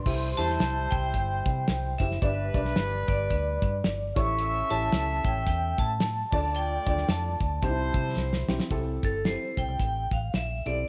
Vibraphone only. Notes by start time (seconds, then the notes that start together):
Already playing: C6
0.37 A5
0.91 G5
1.98 E5
2.22 E5
3.08 D5
4.17 C#6
4.70 A5
5.25 G5
5.47 G5
5.79 A5
6.33 A5
6.56 G5
7.10 A5
9.05 A4
9.26 C5
9.58 G5
9.80 G5
10.13 F5
10.35 E5
10.66 D5